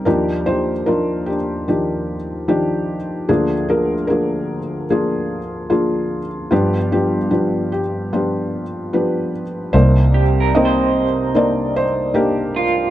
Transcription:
0.05 D#2 F3 D4 D#4 G4 A#4
0.46 F3 D4 D#4 G4 C5
0.86 F3 D4 D#4 F4 A#4
1.26 D4 G4
1.68 D#3 F3 D4 G4
2.48 D#3 F3 D4 G4
3.29 D2 D3 F3 A#3 D4 F4 G#4
3.69 F3 A#3 D4 G#4 A#4
4.07 F3 A#3 D4 G#4 A#4
4.90 F3 A#3 D4 F4 G#4
5.70 F3 A#3 D4 F4 G#4
6.51 G1 G2 F3 B3 D4 F4 G4
6.92 F3 B3 D4 G4
7.31 F3 B3 D4 G4
7.72 G4
8.13 F3 B3 D4 F4 G4
8.93 F3 B3 D4 G4 B4
9.73 C2 C3 A#3 D#4 C5 D5
10.14 G4
10.40 A#4
10.55 A#3 C4 D#4 C5 D#5
10.65 C5
11.34 A#3 D4 D#4 C5 D5
11.39 A#4
11.76 C5
12.14 A#3 D4 D#4 G4 A#4
12.56 F4

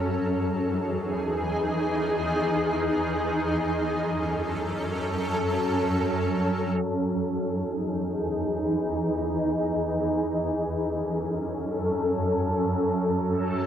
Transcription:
Already playing: E2 E3 D#4 G#4
3.37 F#2 F#3 C#4 A4
6.83 E2 E3 D#4 G#4
10.28 F#2 F#3 C#4 A4

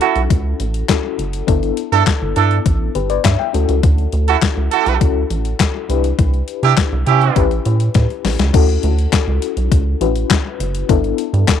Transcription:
Already playing: C#4 E4 F#4 A4
0.01 E4 F#4 A4, closed hi-hat
0.16 B1, closed hi-hat
0.30 C#2, kick, closed hi-hat
0.60 A1, closed hi-hat
0.74 closed hi-hat
0.89 C#4 E4 F#4 A4, kick, snare, clap, closed hi-hat
1.19 F#1, closed hi-hat
1.33 closed hi-hat
1.47 G1 B3 D4 E4 A4, kick, closed hi-hat
1.63 closed hi-hat
1.77 closed hi-hat
1.92 G2 D4 E4 A4, closed hi-hat
2.06 kick, snare, clap, closed hi-hat
2.22 G1
2.36 G2 D4 E4 A4, closed hi-hat
2.51 closed hi-hat
2.66 A1, kick, closed hi-hat
2.95 G1 G4 B4, closed hi-hat
3.10 B4 D5, closed hi-hat
3.24 G2 C#5 E5, kick, snare, clap, closed hi-hat
3.39 E5 G5
3.53 D2 C#4 E4 F#4 A4, closed hi-hat
3.69 C#2, closed hi-hat
3.83 D2, kick, closed hi-hat
3.98 closed hi-hat
4.12 D2, closed hi-hat
4.28 E4 F#4 A4, closed hi-hat
4.42 kick, snare, clap, closed hi-hat
4.57 C#2
4.71 E4 F#4 A4, closed hi-hat
4.86 B1, closed hi-hat
5.01 C#2 C#4 E4 F#4 A4, kick, closed hi-hat
5.30 A1, closed hi-hat
5.45 closed hi-hat
5.59 kick, snare, clap, closed hi-hat
5.89 C2 D4 E4 G4 B4, closed hi-hat
6.04 closed hi-hat
6.19 C2, kick, closed hi-hat
6.34 closed hi-hat
6.48 closed hi-hat
6.63 C3 D4 E4 G4, closed hi-hat
6.77 kick, snare, clap, closed hi-hat
6.92 C2
7.07 C3 C#4 E4 G4, closed hi-hat
7.21 closed hi-hat
7.36 A1 C#4 E4 G4 B4, kick, closed hi-hat
7.51 closed hi-hat
7.65 A2, closed hi-hat
7.80 closed hi-hat
7.94 A2, kick, snare, closed hi-hat
8.10 closed hi-hat
8.25 A1, snare, open hi-hat
8.39 C#2, snare, closed hi-hat
8.53 D2 C#4 E4 F#4 A4, kick, closed hi-hat, crash
8.69 closed hi-hat
8.83 D2, closed hi-hat
8.99 closed hi-hat
9.12 kick, snare, clap, closed hi-hat
9.27 C#2
9.42 closed hi-hat
9.57 B1, closed hi-hat
9.72 C#2, kick, closed hi-hat
10.01 A1 C#4 E4 F#4 B4, closed hi-hat
10.16 closed hi-hat
10.30 kick, snare, clap, closed hi-hat
10.60 F#1, closed hi-hat
10.75 closed hi-hat
10.89 G1 B3 D4 E4 A4, kick, closed hi-hat
11.04 closed hi-hat
11.18 closed hi-hat
11.33 G2, closed hi-hat
11.48 kick, snare, clap, closed hi-hat

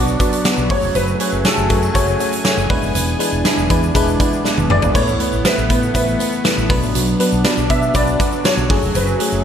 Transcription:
Already playing: B1 F#3 B3 D4 F#4 D5
0.07 shaker
0.19 B3 D4 F#4 D5, kick, closed hi-hat, shaker
0.32 closed hi-hat, shaker
0.44 B3 D4 F#4 D5, snare, closed hi-hat, shaker
0.57 B1, shaker
0.69 F#1 F#3 A3 C#4 F#4 G#4 C5 C#5 G#5, kick, open hi-hat
0.76 C#5
0.82 E1, shaker
0.95 F#1 F#3 B4, closed hi-hat, shaker
1.07 shaker
1.20 A3 C#4 F#4 G#4 C#5, closed hi-hat
1.32 F#1, shaker
1.44 A3 F#4 G#4 A4 C#5, snare, closed hi-hat, shaker
1.58 F#1, shaker
1.69 F#2 A3 B3 F#4 G#4 C#5, kick, closed hi-hat
1.82 C#4, shaker
1.94 F#1 A3 F#4 G#4 C#5, kick, closed hi-hat, shaker
2.08 shaker
2.19 A3 C#4 F#4 G#4 C#5, closed hi-hat, shaker
2.32 closed hi-hat, shaker
2.44 A3 F#4 G#4 C#5, snare, closed hi-hat, shaker
2.57 F#1, shaker
2.69 E1 E3 G#3 B3 D4 E4 B4, kick, open hi-hat
2.82 F#1, shaker
2.95 E1 B3, closed hi-hat, shaker
3.08 shaker
3.19 G#3 D4 E4 B4, closed hi-hat
3.32 E1, shaker
3.44 G#3 D4 E4 G#4 B4, snare, closed hi-hat, shaker
3.57 E1, shaker
3.69 E2 G#3 D4 E4 B4, kick, closed hi-hat
3.83 shaker
3.95 E1 G#3 B3 D4 E4 B4, kick, closed hi-hat, shaker
4.08 shaker
4.20 G#3 D4 E4 B4, kick, closed hi-hat, shaker
4.33 shaker
4.44 G#3 B3 D4 E4 B4, snare, shaker
4.57 E1, high tom, shaker
4.70 F#1 G#3 D4 E4 G#4 B4 D5, mid tom
4.82 G#1, floor tom, shaker
4.94 A1 E3 A3 B3 E4 B4 C#5, kick, splash, shaker
5.08 shaker
5.19 A3 B3 E4 B4, closed hi-hat
5.32 A1, shaker
5.44 A3 B3 E4 B4, snare, closed hi-hat, shaker
5.58 A1, shaker
5.69 A2 A3 B3 E4 B4, kick, closed hi-hat
5.83 shaker
5.94 A1 E3 A3 B3 E4 B4, kick, closed hi-hat, shaker
6.08 shaker
6.19 A3 B3 E4 B4, closed hi-hat, shaker
6.32 shaker
6.44 E3 A3 B3 E4 B4, snare, closed hi-hat, shaker
6.58 A1, shaker
6.69 B1 F#3 B3 D4 B4, kick, open hi-hat
6.83 A1, shaker
6.95 B1 F#3, closed hi-hat, shaker
7.07 shaker
7.19 F#3 B3 D4 B4, closed hi-hat
7.32 B1, shaker
7.44 F#3 B3 D4 B4, snare, closed hi-hat, shaker
7.57 B1, shaker
7.69 B2 F#3 B3 D4 B4 E5, kick, closed hi-hat
7.82 shaker
7.94 B1 F#3 B3 D4 B4 D5, kick, closed hi-hat, shaker
8.07 shaker
8.19 F#3 B3 D4 B4, kick, closed hi-hat, shaker
8.32 shaker
8.44 F#3 B3 D4 B4 C#5, snare, closed hi-hat, shaker
8.57 B1, shaker
8.69 F#1 F#3 A3 C#4 G#4, kick, open hi-hat
8.82 E1, shaker
8.95 F#1 F#3 B4, closed hi-hat, shaker
9.07 shaker
9.19 F#3 A3 C#4 G#4, closed hi-hat
9.32 F#1, shaker

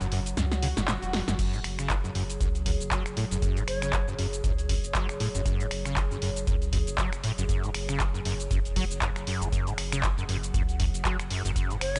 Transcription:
Already playing: F#3 F#4 F#5
0.01 F#1 F#2, closed hi-hat, shaker
0.12 F#2, open hi-hat
0.26 closed hi-hat, shaker
0.37 C#2 F#2, snare, closed hi-hat, swell, shaker
0.52 snare, closed hi-hat, shaker
0.63 C#3, open hi-hat
0.77 F#1 G#2, snare, closed hi-hat, shaker
0.88 A2, snare, clap, closed hi-hat, shaker
1.02 E1, closed hi-hat, shaker
1.13 E2, snare, open hi-hat
1.28 F#1 F#2, snare, closed hi-hat, shaker
1.39 F#2 G#4 C#5, kick, closed hi-hat, crash, shaker
1.53 A2, closed hi-hat, shaker
1.64 F#1, finger snap, open hi-hat
1.79 C#3, finger snap, closed hi-hat, shaker
1.90 F#3, kick, clap, closed hi-hat, shaker
2.04 F#1 F#2, shaker
2.15 F#2, open hi-hat
2.30 closed hi-hat, shaker
2.40 C#2 F#2, kick, closed hi-hat, shaker
2.55 closed hi-hat, shaker
2.66 F#2, kick, open hi-hat
2.80 F#1, closed hi-hat, shaker
2.91 F#3, kick, clap, closed hi-hat, shaker
3.06 F#1, finger snap, shaker
3.17 A2, open hi-hat
3.31 F#1 F#2, closed hi-hat, shaker
3.42 F#2, kick, closed hi-hat, shaker
3.57 A2, closed hi-hat, shaker
3.68 F#1 C#5, finger snap, open hi-hat
3.82 C#3, finger snap, closed hi-hat, shaker
3.93 F#3, kick, clap, closed hi-hat, shaker
4.07 F#1 F#2, shaker
4.19 F#2, open hi-hat
4.33 closed hi-hat, shaker
4.44 C#2 F#2, kick, closed hi-hat, shaker
4.58 closed hi-hat, shaker
4.69 F#2, kick, open hi-hat
4.84 F#1, closed hi-hat, shaker
4.95 F#3, kick, clap, closed hi-hat, shaker
5.09 F#1, finger snap, shaker
5.20 A2, open hi-hat
5.35 F#1 F#2, closed hi-hat, shaker
5.46 F#2, kick, closed hi-hat, shaker
5.60 A2, closed hi-hat, shaker
5.71 F#1, finger snap, open hi-hat
5.86 C#3, finger snap, closed hi-hat, shaker
5.96 F#3, kick, clap, closed hi-hat, shaker
6.11 F#1 F#2, shaker
6.22 F#2, open hi-hat
6.36 closed hi-hat, shaker
6.47 C#2 F#2, kick, closed hi-hat, shaker
6.62 closed hi-hat, shaker
6.73 F#2, kick, open hi-hat
6.87 F#1, closed hi-hat, shaker
6.98 F#3, kick, clap, closed hi-hat, shaker
7.13 F#1, finger snap, shaker
7.24 A2, open hi-hat
7.38 F#1 F#2, closed hi-hat, shaker
7.49 F#2, kick, closed hi-hat, shaker
7.64 A2, closed hi-hat, shaker
7.74 F#1, finger snap, open hi-hat
7.89 C#3, finger snap, shaker
8.00 F#3, kick, clap, closed hi-hat, shaker
8.14 F#1 F#2, shaker
8.25 F#2, open hi-hat
8.40 closed hi-hat, shaker
8.51 E1 F#2, kick, closed hi-hat, shaker
8.65 closed hi-hat, shaker
8.76 F#3, kick, open hi-hat
8.91 F#1, closed hi-hat, shaker
9.02 F#2, kick, clap, closed hi-hat, shaker
9.16 F#1, finger snap, shaker
9.27 F#2, open hi-hat
9.41 F#1 E2, closed hi-hat, shaker
9.52 F#2 F#5, kick, closed hi-hat, shaker
9.67 A2, closed hi-hat, shaker
9.78 F#1, finger snap, open hi-hat
9.92 C#3, finger snap, closed hi-hat, shaker
10.03 F#3, kick, clap, closed hi-hat, shaker
10.18 F#1 F#2, shaker
10.29 F#2, open hi-hat
10.43 closed hi-hat, shaker
10.54 C#2 F#2, kick, closed hi-hat, shaker
10.69 closed hi-hat, shaker
10.80 F#2, kick, open hi-hat
10.94 F#1, closed hi-hat, shaker
11.05 F#3, kick, clap, closed hi-hat, shaker
11.19 F#1, finger snap, shaker
11.30 F#2, open hi-hat
11.45 F#1 F#2, closed hi-hat, shaker
11.56 F#2, kick, closed hi-hat, shaker
11.70 A2, closed hi-hat, shaker
11.81 F#1 C#5, finger snap, open hi-hat
11.96 C#3, finger snap, closed hi-hat

